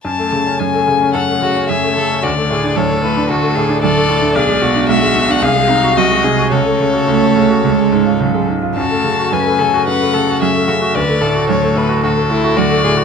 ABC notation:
X:1
M:4/4
L:1/16
Q:1/4=110
K:F#m
V:1 name="Violin"
a4 g4 f4 e4 | d4 c2 B2 A4 d4 | d4 e3 f ^e4 ^d4 | c12 z4 |
a4 g4 f4 e4 | d4 c2 B2 A4 d4 |]
V:2 name="Violin"
z8 A2 F2 G2 A2 | F2 G2 A4 F2 G2 A4 | G2 F6 G2 ^D2 F2 G2 | A12- A2 z2 |
F4 B2 A2 B2 A2 G2 F2 | B2 A6 F2 E2 F2 G2 |]
V:3 name="Cello" clef=bass
z4 F,4 z4 F,4 | z4 F,4 z4 F,4 | z4 G,4 z4 F,4 | z4 A,4 G,4 F,4 |
z4 F,4 z4 F,4 | z4 F,4 z4 F,4 |]
V:4 name="Grand piano" clef=bass
F,, A, C, C F,, A, C, C F,, A, C, C F,, A, C, C | D,, A, A,, D D,, A, A,, D D,, A, A,, D D,, A, A,, D | B,,, G, B,, D B,,, G, B,, D ^B,,, G, ^B,, F B,,, G, B,, F | C,, A, C, F C,, A, C, F C,, G, G,, ^E C,, G, G,, E |
F,, A, C, F F,, A, C, F F,, A, C, F F,, A, C, F | D,, A, A,, F D,, A, A,, F D,, A, A,, F D,, A, A,, F |]